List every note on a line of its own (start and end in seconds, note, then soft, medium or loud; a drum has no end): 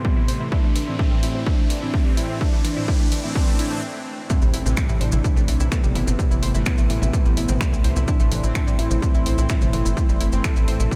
0.00 0.52 A2 loud
0.00 0.52 C3 loud
0.00 0.52 E3 medium
0.00 3.79 A3 medium
0.00 3.83 A3 medium
0.00 0.43 B3 loud
0.00 3.79 E4 medium
0.00 3.83 G4 medium
0.00 3.79 A4 medium
0.00 1.34 E5 medium
0.00 1.11 C6 medium
0.00 riser medium
0.05 0.09 G3 medium
0.05 kick loud
0.17 0.23 E4 medium
0.28 0.35 C5 medium
0.28 open hi-hat medium
0.40 0.47 E4 medium
0.52 1.14 D4 loud
0.52 0.59 E4 medium
0.52 kick loud
0.64 0.70 A3 medium
0.76 0.85 E3 medium
0.76 open hi-hat loud
0.88 1.45 A2 medium
0.88 1.45 E3 medium
0.88 1.45 C4 loud
0.88 0.94 E4 medium
0.97 1.03 A3 medium
0.97 1.18 D5 medium
0.97 kick loud
1.11 1.15 G3 medium
1.20 1.29 E4 medium
1.20 1.45 E4 medium
1.20 3.83 D5 medium
1.20 open hi-hat loud
1.35 1.41 C4 medium
1.46 2.08 D4 loud
1.46 1.53 E4 medium
1.46 kick loud
1.58 1.65 A3 medium
1.70 1.80 E3 medium
1.70 open hi-hat loud
1.82 2.39 A2 loud
1.82 2.39 E3 medium
1.82 2.39 C4 loud
1.82 1.88 E4 medium
1.94 1.98 A3 medium
1.94 kick loud
2.06 2.10 G3 medium
2.17 2.24 E4 medium
2.17 2.39 E4 medium
2.17 open hi-hat loud
2.29 2.36 C4 medium
2.41 2.86 D4 loud
2.41 2.48 E4 medium
2.41 kick loud
2.53 2.59 A3 medium
2.65 2.74 E3 medium
2.65 open hi-hat loud
2.77 2.86 A2 medium
2.77 2.86 E3 medium
2.77 2.86 C4 loud
2.77 2.83 E4 medium
2.88 3.34 D4 loud
2.88 2.95 E4 medium
2.88 kick loud
3.00 3.07 A3 medium
3.12 3.22 E3 medium
3.12 open hi-hat loud
3.24 3.34 A2 medium
3.24 3.34 E3 medium
3.24 3.34 C4 loud
3.24 3.30 E4 medium
3.35 3.57 A2 loud
3.35 3.57 E3 medium
3.35 3.57 C4 loud
3.35 3.57 D4 loud
3.35 3.42 E4 medium
3.35 kick loud
3.47 3.54 A3 medium
3.59 3.81 A2 loud
3.59 3.81 E3 medium
3.59 3.81 C4 loud
3.59 3.81 D4 loud
3.59 3.66 E4 medium
3.59 open hi-hat loud
3.71 3.77 A3 medium
4.30 4.34 A3 medium
4.30 10.96 A3 medium
4.30 4.92 C4 loud
4.30 10.96 E4 medium
4.30 10.96 A4 medium
4.30 kick loud
4.30 impact medium
4.30 maracas medium
4.42 4.51 A1 medium
4.42 4.46 G3 medium
4.42 maracas soft
4.54 4.63 A1 loud
4.54 4.60 E4 medium
4.54 open hi-hat loud
4.66 4.75 A1 medium
4.66 6.52 A2 loud
4.66 6.52 C3 loud
4.66 6.52 E3 medium
4.66 4.72 C4 medium
4.66 maracas medium
4.70 10.96 C6 medium
4.77 4.81 G3 medium
4.77 finger snap loud
4.77 kick loud
4.77 maracas medium
4.89 4.99 A2 medium
4.89 4.96 E4 medium
4.89 maracas soft
4.99 5.10 A1 medium
4.99 5.62 D4 medium
4.99 5.07 C5 medium
4.99 10.96 E5 medium
4.99 open hi-hat medium
5.12 5.22 A1 medium
5.12 5.19 E4 medium
5.12 mid tom medium
5.12 maracas medium
5.24 5.31 E4 medium
5.24 kick loud
5.24 maracas medium
5.36 5.46 B1 medium
5.36 5.43 A3 medium
5.36 maracas soft
5.48 5.58 B1 loud
5.48 5.58 E3 medium
5.48 open hi-hat loud
5.60 5.69 B1 medium
5.60 5.67 E4 medium
5.60 maracas medium
5.72 5.76 A3 medium
5.72 6.57 B3 medium
5.72 finger snap loud
5.72 kick loud
5.72 maracas medium
5.84 5.93 G1 medium
5.84 5.88 G3 medium
5.84 mid tom loud
5.84 maracas soft
5.95 6.05 G1 loud
5.95 6.02 E4 medium
5.95 mid tom medium
5.95 open hi-hat medium
6.07 6.17 G1 loud
6.07 6.14 C4 medium
6.07 maracas medium
6.19 6.23 G3 medium
6.19 kick loud
6.19 maracas medium
6.31 6.40 G1 medium
6.31 6.37 E4 medium
6.31 maracas soft
6.42 6.52 G1 loud
6.42 6.49 C5 medium
6.42 open hi-hat loud
6.54 6.64 G1 medium
6.54 8.41 A2 loud
6.54 8.41 C3 loud
6.54 8.41 E3 medium
6.54 6.61 E4 medium
6.54 maracas medium
6.66 7.99 B3 loud
6.66 6.73 E4 medium
6.66 finger snap loud
6.66 kick loud
6.66 maracas medium
6.78 6.87 A1 medium
6.78 6.85 A3 medium
6.78 maracas soft
6.90 6.99 A1 loud
6.90 7.00 E3 medium
6.90 open hi-hat loud
7.02 7.11 A1 medium
7.02 7.08 E4 medium
7.02 mid tom medium
7.02 maracas medium
7.13 7.17 A3 medium
7.13 kick loud
7.13 maracas medium
7.25 7.35 A1 medium
7.25 7.29 G3 medium
7.25 maracas soft
7.37 7.47 A1 loud
7.37 7.44 E4 medium
7.37 open hi-hat loud
7.48 7.58 A1 loud
7.48 7.55 C4 medium
7.48 mid tom loud
7.48 maracas medium
7.61 7.65 G3 medium
7.61 finger snap loud
7.61 kick loud
7.61 maracas medium
7.73 7.82 C2 medium
7.73 7.79 E4 medium
7.73 maracas soft
7.84 7.94 C2 loud
7.84 7.91 C5 medium
7.84 open hi-hat medium
7.96 8.06 C2 medium
7.96 8.03 E4 medium
7.96 mid tom medium
7.96 maracas medium
8.08 8.69 D4 loud
8.08 8.14 E4 medium
8.08 kick loud
8.08 maracas medium
8.20 8.29 A1 medium
8.20 8.26 A3 medium
8.20 maracas soft
8.32 8.41 A1 loud
8.32 8.41 E3 medium
8.32 open hi-hat loud
8.43 8.53 A1 medium
8.43 10.30 A2 loud
8.43 10.30 E3 medium
8.43 10.30 C4 loud
8.43 8.50 E4 medium
8.43 maracas medium
8.55 8.59 A3 medium
8.55 finger snap loud
8.55 kick loud
8.55 maracas medium
8.67 8.76 A2 medium
8.67 8.71 G3 medium
8.67 maracas soft
8.79 8.88 A1 loud
8.79 8.85 E4 medium
8.79 9.40 E4 medium
8.79 open hi-hat loud
8.91 9.00 A1 loud
8.91 8.97 C4 medium
8.91 mid tom medium
8.91 maracas medium
9.02 9.06 G3 medium
9.02 kick loud
9.02 maracas medium
9.14 9.24 B1 medium
9.14 9.21 E4 medium
9.14 maracas soft
9.26 9.36 B1 loud
9.26 9.33 C5 medium
9.26 open hi-hat loud
9.38 9.47 B1 loud
9.38 9.44 E4 medium
9.38 maracas medium
9.49 9.56 E4 medium
9.49 10.35 E4 loud
9.49 finger snap loud
9.49 kick loud
9.49 maracas medium
9.61 9.71 G1 medium
9.61 9.68 A3 medium
9.61 mid tom medium
9.61 maracas soft
9.73 9.83 G1 loud
9.73 9.83 E3 medium
9.73 mid tom medium
9.73 open hi-hat loud
9.85 9.95 G1 medium
9.85 9.92 E4 medium
9.85 maracas medium
9.97 10.01 A3 medium
9.97 kick loud
9.97 maracas medium
10.09 10.18 G1 medium
10.09 10.13 G3 medium
10.09 maracas soft
10.21 10.30 G1 loud
10.21 10.27 E4 medium
10.21 open hi-hat loud
10.32 10.42 G1 medium
10.32 10.96 A2 loud
10.32 10.96 E3 medium
10.32 10.39 C4 medium
10.32 10.96 C4 loud
10.32 maracas medium
10.44 10.48 G3 medium
10.44 10.96 A4 loud
10.44 finger snap loud
10.44 kick loud
10.44 maracas medium
10.56 10.65 A1 medium
10.56 10.63 E4 medium
10.56 maracas soft
10.68 10.77 A1 medium
10.68 10.74 C5 medium
10.68 open hi-hat medium
10.80 10.89 A1 medium
10.80 10.86 E4 medium
10.80 mid tom medium
10.80 maracas medium
10.91 10.96 E4 medium
10.91 kick loud
10.91 maracas medium